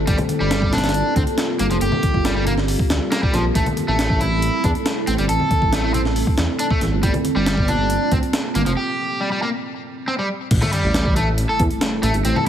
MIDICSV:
0, 0, Header, 1, 6, 480
1, 0, Start_track
1, 0, Tempo, 434783
1, 84, Time_signature, 4, 2, 24, 8
1, 13786, End_track
2, 0, Start_track
2, 0, Title_t, "Ambient pad"
2, 0, Program_c, 0, 92
2, 0, Note_on_c, 0, 60, 73
2, 0, Note_on_c, 0, 69, 90
2, 81, Note_on_c, 0, 65, 75
2, 82, Note_on_c, 0, 55, 81
2, 83, Note_on_c, 0, 58, 73
2, 3878, Note_off_c, 0, 69, 0
2, 3879, Note_off_c, 0, 60, 0
2, 3884, Note_off_c, 0, 65, 0
2, 3885, Note_off_c, 0, 58, 0
2, 3922, Note_on_c, 0, 57, 73
2, 3922, Note_on_c, 0, 60, 74
2, 3922, Note_on_c, 0, 64, 72
2, 3923, Note_on_c, 0, 69, 89
2, 7724, Note_off_c, 0, 57, 0
2, 7724, Note_off_c, 0, 60, 0
2, 7724, Note_off_c, 0, 64, 0
2, 7759, Note_on_c, 0, 65, 74
2, 7760, Note_on_c, 0, 58, 75
2, 7761, Note_on_c, 0, 60, 73
2, 9639, Note_off_c, 0, 55, 0
2, 9639, Note_off_c, 0, 69, 0
2, 9662, Note_off_c, 0, 65, 0
2, 9663, Note_off_c, 0, 58, 0
2, 9663, Note_off_c, 0, 60, 0
2, 11600, Note_on_c, 0, 57, 74
2, 11600, Note_on_c, 0, 64, 75
2, 11601, Note_on_c, 0, 60, 75
2, 11601, Note_on_c, 0, 69, 90
2, 11603, Note_on_c, 0, 55, 80
2, 13786, Note_off_c, 0, 55, 0
2, 13786, Note_off_c, 0, 57, 0
2, 13786, Note_off_c, 0, 60, 0
2, 13786, Note_off_c, 0, 64, 0
2, 13786, Note_off_c, 0, 69, 0
2, 13786, End_track
3, 0, Start_track
3, 0, Title_t, "Overdriven electric guitar"
3, 0, Program_c, 1, 29
3, 82, Note_on_c, 1, 55, 82
3, 180, Note_off_c, 1, 55, 0
3, 446, Note_on_c, 1, 55, 101
3, 792, Note_off_c, 1, 55, 0
3, 806, Note_on_c, 1, 62, 98
3, 1273, Note_off_c, 1, 62, 0
3, 1285, Note_on_c, 1, 60, 77
3, 1342, Note_off_c, 1, 60, 0
3, 1764, Note_on_c, 1, 58, 98
3, 1822, Note_off_c, 1, 58, 0
3, 1888, Note_on_c, 1, 53, 74
3, 1943, Note_off_c, 1, 53, 0
3, 2006, Note_on_c, 1, 67, 85
3, 2473, Note_off_c, 1, 67, 0
3, 2485, Note_on_c, 1, 55, 81
3, 2581, Note_off_c, 1, 55, 0
3, 2608, Note_on_c, 1, 55, 77
3, 2700, Note_off_c, 1, 55, 0
3, 2725, Note_on_c, 1, 58, 100
3, 2782, Note_off_c, 1, 58, 0
3, 3443, Note_on_c, 1, 58, 82
3, 3540, Note_off_c, 1, 58, 0
3, 3566, Note_on_c, 1, 55, 74
3, 3678, Note_off_c, 1, 55, 0
3, 3684, Note_on_c, 1, 53, 74
3, 3794, Note_off_c, 1, 53, 0
3, 3926, Note_on_c, 1, 57, 82
3, 4022, Note_off_c, 1, 57, 0
3, 4285, Note_on_c, 1, 57, 100
3, 4631, Note_off_c, 1, 57, 0
3, 4643, Note_on_c, 1, 64, 101
3, 5111, Note_off_c, 1, 64, 0
3, 5121, Note_on_c, 1, 62, 75
3, 5181, Note_off_c, 1, 62, 0
3, 5603, Note_on_c, 1, 60, 104
3, 5661, Note_off_c, 1, 60, 0
3, 5726, Note_on_c, 1, 55, 74
3, 5782, Note_off_c, 1, 55, 0
3, 5840, Note_on_c, 1, 69, 83
3, 6310, Note_off_c, 1, 69, 0
3, 6322, Note_on_c, 1, 57, 82
3, 6420, Note_off_c, 1, 57, 0
3, 6443, Note_on_c, 1, 57, 76
3, 6538, Note_off_c, 1, 57, 0
3, 6561, Note_on_c, 1, 60, 98
3, 6620, Note_off_c, 1, 60, 0
3, 7283, Note_on_c, 1, 62, 105
3, 7341, Note_off_c, 1, 62, 0
3, 7405, Note_on_c, 1, 57, 77
3, 7498, Note_off_c, 1, 57, 0
3, 7762, Note_on_c, 1, 55, 84
3, 7859, Note_off_c, 1, 55, 0
3, 8125, Note_on_c, 1, 55, 101
3, 8471, Note_off_c, 1, 55, 0
3, 8484, Note_on_c, 1, 62, 102
3, 8952, Note_off_c, 1, 62, 0
3, 8964, Note_on_c, 1, 60, 77
3, 9022, Note_off_c, 1, 60, 0
3, 9442, Note_on_c, 1, 58, 104
3, 9501, Note_off_c, 1, 58, 0
3, 9566, Note_on_c, 1, 53, 76
3, 9622, Note_off_c, 1, 53, 0
3, 9681, Note_on_c, 1, 67, 85
3, 10150, Note_off_c, 1, 67, 0
3, 10163, Note_on_c, 1, 55, 82
3, 10260, Note_off_c, 1, 55, 0
3, 10284, Note_on_c, 1, 55, 77
3, 10378, Note_off_c, 1, 55, 0
3, 10404, Note_on_c, 1, 58, 101
3, 10462, Note_off_c, 1, 58, 0
3, 11125, Note_on_c, 1, 60, 101
3, 11182, Note_off_c, 1, 60, 0
3, 11247, Note_on_c, 1, 55, 74
3, 11339, Note_off_c, 1, 55, 0
3, 11728, Note_on_c, 1, 57, 103
3, 11820, Note_off_c, 1, 57, 0
3, 11845, Note_on_c, 1, 55, 77
3, 12312, Note_off_c, 1, 55, 0
3, 12325, Note_on_c, 1, 57, 101
3, 12441, Note_off_c, 1, 57, 0
3, 12687, Note_on_c, 1, 69, 99
3, 12798, Note_off_c, 1, 69, 0
3, 13286, Note_on_c, 1, 57, 106
3, 13401, Note_off_c, 1, 57, 0
3, 13524, Note_on_c, 1, 60, 85
3, 13634, Note_off_c, 1, 60, 0
3, 13646, Note_on_c, 1, 69, 104
3, 13758, Note_off_c, 1, 69, 0
3, 13786, End_track
4, 0, Start_track
4, 0, Title_t, "Detuned saw bass"
4, 0, Program_c, 2, 39
4, 82, Note_on_c, 2, 31, 98
4, 182, Note_off_c, 2, 31, 0
4, 446, Note_on_c, 2, 31, 97
4, 1128, Note_off_c, 2, 31, 0
4, 1283, Note_on_c, 2, 38, 98
4, 1382, Note_off_c, 2, 38, 0
4, 1764, Note_on_c, 2, 31, 82
4, 1863, Note_off_c, 2, 31, 0
4, 1885, Note_on_c, 2, 29, 102
4, 1981, Note_off_c, 2, 29, 0
4, 2001, Note_on_c, 2, 31, 97
4, 2101, Note_off_c, 2, 31, 0
4, 2365, Note_on_c, 2, 31, 97
4, 3048, Note_off_c, 2, 31, 0
4, 3203, Note_on_c, 2, 38, 98
4, 3302, Note_off_c, 2, 38, 0
4, 3683, Note_on_c, 2, 34, 81
4, 3879, Note_off_c, 2, 34, 0
4, 3922, Note_on_c, 2, 33, 97
4, 4022, Note_off_c, 2, 33, 0
4, 4286, Note_on_c, 2, 33, 100
4, 4969, Note_off_c, 2, 33, 0
4, 5122, Note_on_c, 2, 40, 99
4, 5222, Note_off_c, 2, 40, 0
4, 5603, Note_on_c, 2, 33, 82
4, 5702, Note_off_c, 2, 33, 0
4, 5729, Note_on_c, 2, 31, 100
4, 5822, Note_off_c, 2, 31, 0
4, 5846, Note_on_c, 2, 33, 101
4, 5944, Note_off_c, 2, 33, 0
4, 6203, Note_on_c, 2, 33, 98
4, 6887, Note_off_c, 2, 33, 0
4, 7043, Note_on_c, 2, 40, 98
4, 7142, Note_off_c, 2, 40, 0
4, 7522, Note_on_c, 2, 33, 83
4, 7622, Note_off_c, 2, 33, 0
4, 7647, Note_on_c, 2, 31, 102
4, 7741, Note_off_c, 2, 31, 0
4, 7760, Note_on_c, 2, 31, 100
4, 7861, Note_off_c, 2, 31, 0
4, 8124, Note_on_c, 2, 31, 98
4, 8807, Note_off_c, 2, 31, 0
4, 8961, Note_on_c, 2, 38, 98
4, 9061, Note_off_c, 2, 38, 0
4, 9443, Note_on_c, 2, 31, 84
4, 9542, Note_off_c, 2, 31, 0
4, 9565, Note_on_c, 2, 29, 100
4, 9661, Note_off_c, 2, 29, 0
4, 11604, Note_on_c, 2, 33, 102
4, 11703, Note_off_c, 2, 33, 0
4, 11965, Note_on_c, 2, 33, 100
4, 12648, Note_off_c, 2, 33, 0
4, 12802, Note_on_c, 2, 40, 99
4, 12902, Note_off_c, 2, 40, 0
4, 13281, Note_on_c, 2, 33, 84
4, 13381, Note_off_c, 2, 33, 0
4, 13403, Note_on_c, 2, 31, 101
4, 13499, Note_off_c, 2, 31, 0
4, 13522, Note_on_c, 2, 33, 102
4, 13622, Note_off_c, 2, 33, 0
4, 13786, End_track
5, 0, Start_track
5, 0, Title_t, "Sub drop"
5, 0, Program_c, 3, 103
5, 11602, Note_on_c, 3, 60, 79
5, 13523, Note_off_c, 3, 60, 0
5, 13786, End_track
6, 0, Start_track
6, 0, Title_t, "Drums"
6, 82, Note_on_c, 9, 36, 108
6, 82, Note_on_c, 9, 42, 89
6, 192, Note_off_c, 9, 42, 0
6, 193, Note_off_c, 9, 36, 0
6, 195, Note_on_c, 9, 64, 100
6, 200, Note_on_c, 9, 63, 102
6, 203, Note_on_c, 9, 42, 43
6, 305, Note_off_c, 9, 64, 0
6, 311, Note_off_c, 9, 63, 0
6, 314, Note_off_c, 9, 42, 0
6, 319, Note_on_c, 9, 63, 89
6, 321, Note_on_c, 9, 42, 66
6, 429, Note_off_c, 9, 63, 0
6, 431, Note_off_c, 9, 42, 0
6, 561, Note_on_c, 9, 38, 117
6, 561, Note_on_c, 9, 42, 88
6, 672, Note_off_c, 9, 38, 0
6, 672, Note_off_c, 9, 42, 0
6, 684, Note_on_c, 9, 36, 94
6, 795, Note_off_c, 9, 36, 0
6, 802, Note_on_c, 9, 38, 88
6, 802, Note_on_c, 9, 42, 66
6, 805, Note_on_c, 9, 64, 88
6, 862, Note_off_c, 9, 38, 0
6, 862, Note_off_c, 9, 42, 0
6, 862, Note_on_c, 9, 38, 86
6, 862, Note_on_c, 9, 42, 68
6, 916, Note_off_c, 9, 64, 0
6, 923, Note_off_c, 9, 38, 0
6, 923, Note_off_c, 9, 42, 0
6, 923, Note_on_c, 9, 38, 90
6, 923, Note_on_c, 9, 42, 69
6, 981, Note_off_c, 9, 38, 0
6, 981, Note_off_c, 9, 42, 0
6, 981, Note_on_c, 9, 38, 90
6, 981, Note_on_c, 9, 42, 67
6, 1040, Note_off_c, 9, 42, 0
6, 1040, Note_on_c, 9, 42, 90
6, 1092, Note_off_c, 9, 38, 0
6, 1151, Note_off_c, 9, 42, 0
6, 1281, Note_on_c, 9, 42, 68
6, 1282, Note_on_c, 9, 36, 96
6, 1391, Note_off_c, 9, 42, 0
6, 1392, Note_off_c, 9, 36, 0
6, 1402, Note_on_c, 9, 42, 45
6, 1513, Note_off_c, 9, 42, 0
6, 1520, Note_on_c, 9, 38, 117
6, 1520, Note_on_c, 9, 42, 91
6, 1630, Note_off_c, 9, 38, 0
6, 1630, Note_off_c, 9, 42, 0
6, 1760, Note_on_c, 9, 42, 71
6, 1870, Note_off_c, 9, 42, 0
6, 1883, Note_on_c, 9, 42, 42
6, 1994, Note_off_c, 9, 42, 0
6, 2000, Note_on_c, 9, 42, 85
6, 2110, Note_off_c, 9, 42, 0
6, 2119, Note_on_c, 9, 64, 96
6, 2121, Note_on_c, 9, 63, 100
6, 2229, Note_off_c, 9, 64, 0
6, 2231, Note_off_c, 9, 63, 0
6, 2238, Note_on_c, 9, 63, 82
6, 2242, Note_on_c, 9, 36, 94
6, 2242, Note_on_c, 9, 42, 66
6, 2348, Note_off_c, 9, 63, 0
6, 2352, Note_off_c, 9, 42, 0
6, 2353, Note_off_c, 9, 36, 0
6, 2364, Note_on_c, 9, 36, 95
6, 2475, Note_off_c, 9, 36, 0
6, 2482, Note_on_c, 9, 38, 115
6, 2482, Note_on_c, 9, 42, 88
6, 2593, Note_off_c, 9, 38, 0
6, 2593, Note_off_c, 9, 42, 0
6, 2722, Note_on_c, 9, 64, 75
6, 2723, Note_on_c, 9, 42, 66
6, 2833, Note_off_c, 9, 64, 0
6, 2834, Note_off_c, 9, 42, 0
6, 2844, Note_on_c, 9, 38, 44
6, 2955, Note_off_c, 9, 38, 0
6, 2962, Note_on_c, 9, 46, 80
6, 3072, Note_off_c, 9, 46, 0
6, 3085, Note_on_c, 9, 36, 93
6, 3195, Note_off_c, 9, 36, 0
6, 3202, Note_on_c, 9, 38, 118
6, 3202, Note_on_c, 9, 42, 71
6, 3313, Note_off_c, 9, 38, 0
6, 3313, Note_off_c, 9, 42, 0
6, 3442, Note_on_c, 9, 38, 104
6, 3442, Note_on_c, 9, 42, 79
6, 3552, Note_off_c, 9, 38, 0
6, 3552, Note_off_c, 9, 42, 0
6, 3565, Note_on_c, 9, 36, 96
6, 3675, Note_off_c, 9, 36, 0
6, 3683, Note_on_c, 9, 38, 38
6, 3683, Note_on_c, 9, 42, 70
6, 3794, Note_off_c, 9, 38, 0
6, 3794, Note_off_c, 9, 42, 0
6, 3922, Note_on_c, 9, 36, 109
6, 3922, Note_on_c, 9, 42, 88
6, 4033, Note_off_c, 9, 36, 0
6, 4033, Note_off_c, 9, 42, 0
6, 4041, Note_on_c, 9, 64, 86
6, 4045, Note_on_c, 9, 42, 44
6, 4045, Note_on_c, 9, 63, 92
6, 4152, Note_off_c, 9, 64, 0
6, 4156, Note_off_c, 9, 42, 0
6, 4156, Note_off_c, 9, 63, 0
6, 4160, Note_on_c, 9, 63, 84
6, 4163, Note_on_c, 9, 42, 66
6, 4271, Note_off_c, 9, 63, 0
6, 4273, Note_off_c, 9, 42, 0
6, 4404, Note_on_c, 9, 38, 117
6, 4404, Note_on_c, 9, 42, 88
6, 4514, Note_off_c, 9, 38, 0
6, 4514, Note_off_c, 9, 42, 0
6, 4525, Note_on_c, 9, 36, 95
6, 4636, Note_off_c, 9, 36, 0
6, 4639, Note_on_c, 9, 64, 73
6, 4645, Note_on_c, 9, 42, 67
6, 4750, Note_off_c, 9, 64, 0
6, 4756, Note_off_c, 9, 42, 0
6, 4884, Note_on_c, 9, 42, 88
6, 4994, Note_off_c, 9, 42, 0
6, 5122, Note_on_c, 9, 36, 96
6, 5122, Note_on_c, 9, 42, 68
6, 5232, Note_off_c, 9, 36, 0
6, 5232, Note_off_c, 9, 42, 0
6, 5246, Note_on_c, 9, 42, 44
6, 5356, Note_off_c, 9, 42, 0
6, 5362, Note_on_c, 9, 38, 115
6, 5362, Note_on_c, 9, 42, 88
6, 5472, Note_off_c, 9, 38, 0
6, 5472, Note_off_c, 9, 42, 0
6, 5600, Note_on_c, 9, 42, 70
6, 5711, Note_off_c, 9, 42, 0
6, 5723, Note_on_c, 9, 42, 45
6, 5833, Note_off_c, 9, 42, 0
6, 5840, Note_on_c, 9, 42, 88
6, 5951, Note_off_c, 9, 42, 0
6, 5959, Note_on_c, 9, 63, 82
6, 5959, Note_on_c, 9, 64, 81
6, 6069, Note_off_c, 9, 64, 0
6, 6070, Note_off_c, 9, 63, 0
6, 6080, Note_on_c, 9, 42, 68
6, 6081, Note_on_c, 9, 36, 93
6, 6084, Note_on_c, 9, 63, 80
6, 6191, Note_off_c, 9, 36, 0
6, 6191, Note_off_c, 9, 42, 0
6, 6194, Note_off_c, 9, 63, 0
6, 6203, Note_on_c, 9, 36, 97
6, 6314, Note_off_c, 9, 36, 0
6, 6321, Note_on_c, 9, 38, 114
6, 6321, Note_on_c, 9, 42, 90
6, 6432, Note_off_c, 9, 38, 0
6, 6432, Note_off_c, 9, 42, 0
6, 6562, Note_on_c, 9, 42, 68
6, 6566, Note_on_c, 9, 64, 74
6, 6672, Note_off_c, 9, 42, 0
6, 6676, Note_off_c, 9, 64, 0
6, 6684, Note_on_c, 9, 38, 44
6, 6794, Note_off_c, 9, 38, 0
6, 6801, Note_on_c, 9, 46, 79
6, 6911, Note_off_c, 9, 46, 0
6, 6923, Note_on_c, 9, 36, 94
6, 7033, Note_off_c, 9, 36, 0
6, 7039, Note_on_c, 9, 38, 116
6, 7039, Note_on_c, 9, 42, 70
6, 7149, Note_off_c, 9, 38, 0
6, 7149, Note_off_c, 9, 42, 0
6, 7278, Note_on_c, 9, 42, 91
6, 7388, Note_off_c, 9, 42, 0
6, 7402, Note_on_c, 9, 36, 96
6, 7513, Note_off_c, 9, 36, 0
6, 7521, Note_on_c, 9, 38, 38
6, 7521, Note_on_c, 9, 42, 70
6, 7632, Note_off_c, 9, 38, 0
6, 7632, Note_off_c, 9, 42, 0
6, 7761, Note_on_c, 9, 36, 112
6, 7761, Note_on_c, 9, 42, 88
6, 7871, Note_off_c, 9, 36, 0
6, 7872, Note_off_c, 9, 42, 0
6, 7878, Note_on_c, 9, 63, 88
6, 7881, Note_on_c, 9, 64, 82
6, 7882, Note_on_c, 9, 42, 43
6, 7988, Note_off_c, 9, 63, 0
6, 7991, Note_off_c, 9, 64, 0
6, 7993, Note_off_c, 9, 42, 0
6, 8000, Note_on_c, 9, 42, 69
6, 8003, Note_on_c, 9, 63, 78
6, 8111, Note_off_c, 9, 42, 0
6, 8113, Note_off_c, 9, 63, 0
6, 8240, Note_on_c, 9, 38, 119
6, 8240, Note_on_c, 9, 42, 90
6, 8351, Note_off_c, 9, 38, 0
6, 8351, Note_off_c, 9, 42, 0
6, 8363, Note_on_c, 9, 36, 100
6, 8474, Note_off_c, 9, 36, 0
6, 8480, Note_on_c, 9, 42, 70
6, 8486, Note_on_c, 9, 64, 70
6, 8590, Note_off_c, 9, 42, 0
6, 8596, Note_off_c, 9, 64, 0
6, 8719, Note_on_c, 9, 42, 89
6, 8830, Note_off_c, 9, 42, 0
6, 8960, Note_on_c, 9, 42, 69
6, 8961, Note_on_c, 9, 36, 98
6, 9070, Note_off_c, 9, 42, 0
6, 9071, Note_off_c, 9, 36, 0
6, 9084, Note_on_c, 9, 42, 44
6, 9194, Note_off_c, 9, 42, 0
6, 9201, Note_on_c, 9, 38, 119
6, 9201, Note_on_c, 9, 42, 90
6, 9311, Note_off_c, 9, 38, 0
6, 9311, Note_off_c, 9, 42, 0
6, 9440, Note_on_c, 9, 42, 68
6, 9551, Note_off_c, 9, 42, 0
6, 9563, Note_on_c, 9, 42, 43
6, 9673, Note_off_c, 9, 42, 0
6, 11602, Note_on_c, 9, 42, 90
6, 11602, Note_on_c, 9, 49, 95
6, 11603, Note_on_c, 9, 36, 113
6, 11713, Note_off_c, 9, 42, 0
6, 11713, Note_off_c, 9, 49, 0
6, 11714, Note_off_c, 9, 36, 0
6, 11721, Note_on_c, 9, 64, 90
6, 11725, Note_on_c, 9, 42, 45
6, 11727, Note_on_c, 9, 63, 101
6, 11831, Note_off_c, 9, 64, 0
6, 11835, Note_off_c, 9, 42, 0
6, 11837, Note_off_c, 9, 63, 0
6, 11841, Note_on_c, 9, 42, 69
6, 11851, Note_on_c, 9, 63, 78
6, 11952, Note_off_c, 9, 42, 0
6, 11961, Note_off_c, 9, 63, 0
6, 12082, Note_on_c, 9, 38, 115
6, 12082, Note_on_c, 9, 42, 90
6, 12193, Note_off_c, 9, 38, 0
6, 12193, Note_off_c, 9, 42, 0
6, 12205, Note_on_c, 9, 36, 97
6, 12316, Note_off_c, 9, 36, 0
6, 12323, Note_on_c, 9, 42, 70
6, 12324, Note_on_c, 9, 64, 78
6, 12433, Note_off_c, 9, 42, 0
6, 12435, Note_off_c, 9, 64, 0
6, 12562, Note_on_c, 9, 42, 93
6, 12672, Note_off_c, 9, 42, 0
6, 12801, Note_on_c, 9, 42, 71
6, 12802, Note_on_c, 9, 36, 100
6, 12911, Note_off_c, 9, 42, 0
6, 12912, Note_off_c, 9, 36, 0
6, 12923, Note_on_c, 9, 42, 45
6, 13033, Note_off_c, 9, 42, 0
6, 13041, Note_on_c, 9, 38, 119
6, 13041, Note_on_c, 9, 42, 93
6, 13151, Note_off_c, 9, 38, 0
6, 13151, Note_off_c, 9, 42, 0
6, 13282, Note_on_c, 9, 42, 72
6, 13392, Note_off_c, 9, 42, 0
6, 13404, Note_on_c, 9, 42, 45
6, 13514, Note_off_c, 9, 42, 0
6, 13521, Note_on_c, 9, 42, 90
6, 13631, Note_off_c, 9, 42, 0
6, 13649, Note_on_c, 9, 64, 98
6, 13650, Note_on_c, 9, 63, 91
6, 13759, Note_off_c, 9, 64, 0
6, 13761, Note_off_c, 9, 63, 0
6, 13786, End_track
0, 0, End_of_file